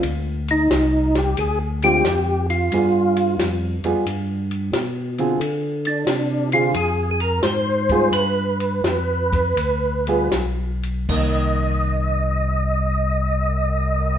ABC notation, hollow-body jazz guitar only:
X:1
M:4/4
L:1/8
Q:"Swing" 1/4=88
K:Cm
V:1 name="Hollow-body jazz guitar"
z4 z [D,A,CF] z2 | [G,=B,FA]3 [G,B,FA] z3 [D,CFA] | z3 [D,CFA] z3 [G,=B,FA] | z4 z [G,=B,FA] z2 |
[E,B,]8 |]